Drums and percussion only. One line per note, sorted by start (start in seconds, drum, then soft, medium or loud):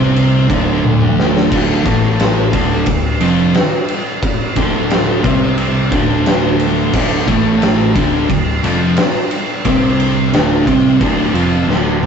0.00 snare soft
0.16 ride loud
0.50 kick loud
0.50 ride medium
0.84 high tom medium
1.02 mid tom medium
1.20 snare loud
1.37 snare loud
1.52 kick loud
1.52 crash loud
1.86 kick loud
1.86 ride medium
2.20 snare loud
2.20 ride loud
2.53 kick loud
2.53 ride medium
2.86 kick loud
2.86 ride loud
3.21 ride medium
3.54 snare loud
3.54 ride loud
3.89 ride medium
4.23 kick loud
4.23 ride loud
4.56 kick loud
4.56 ride medium
4.90 snare loud
4.90 ride loud
5.24 kick loud
5.24 ride medium
5.58 ride loud
5.92 kick loud
5.92 ride medium
6.26 snare loud
6.26 ride loud
6.60 ride medium
6.93 kick loud
6.93 crash loud
7.28 kick loud
7.28 ride medium
7.62 snare loud
7.62 ride loud
7.96 kick loud
7.96 ride medium
8.30 kick loud
8.30 ride loud
8.64 ride medium
8.97 snare loud
8.97 ride loud
9.31 ride medium
9.65 kick loud
9.65 ride loud
10.00 ride medium
10.33 snare loud
10.33 ride loud
10.67 kick loud
10.67 ride medium
10.86 snare soft
11.01 kick loud
11.01 ride loud
11.35 ride medium
11.70 snare medium
12.03 mid tom loud